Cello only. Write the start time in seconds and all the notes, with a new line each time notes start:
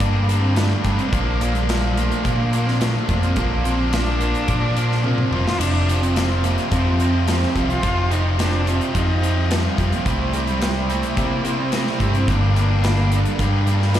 0.00 A#3
0.41 C4
0.54 A3
0.99 C4
1.12 A#3
1.54 G3
1.96 A3
2.24 A#3
2.66 C4
2.81 A3
3.22 C4
3.36 A#3
3.65 C4
3.93 D4
5.04 C4
5.46 F4
5.60 D4
6.02 C4
6.44 A#3
6.73 C4
7.27 C4
7.70 F4
8.11 D#4
8.39 D4
8.68 C4
8.96 D#4
9.52 G3
9.94 A#3
10.08 A3
10.50 G3
10.91 A3
11.18 A#3
11.59 C4
11.73 A3
12.15 C4
12.29 A#3
12.56 A#3
13.26 G3
13.40 G3